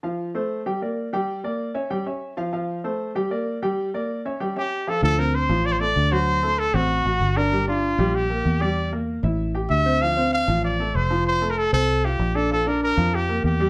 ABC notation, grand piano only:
X:1
M:4/4
L:1/8
Q:1/4=192
K:Dm
V:1 name="Grand piano"
[F,Ff]2 [A,Ac]2 [G,Gg] [B,Bd]2 [G,Gg]- | [G,Gg] [B,Bd]2 [^C^ce] [G,Gg] [Cce]2 [F,Ff] | [F,Ff]2 [A,Ac]2 [G,Gg] [B,Bd]2 [G,Gg]- | [G,Gg] [B,Bd]2 [^C^ce] [G,Gg] [Cce]2 [F,Ff] |
[F,F] [Cc]2 [F,F]2 [A,A]2 [^F,^F]- | [^F,^F] [A,A]2 [Cc]2 [F^f]2 [Dd] | [G,G] [Dd]2 [G,G]2 [B,B]2 [G,G]- | [G,G] [B,B]2 [Ee]2 [Gg]2 [Cc] |
[F,F] [Cc]2 [F,F]2 [A,A]2 [F,F]- | [F,F] [A,A]2 [Cc]2 [Ff]2 [Dd] | [F,F] [Dd]2 [F,F]2 [B,B]2 [G,G] |]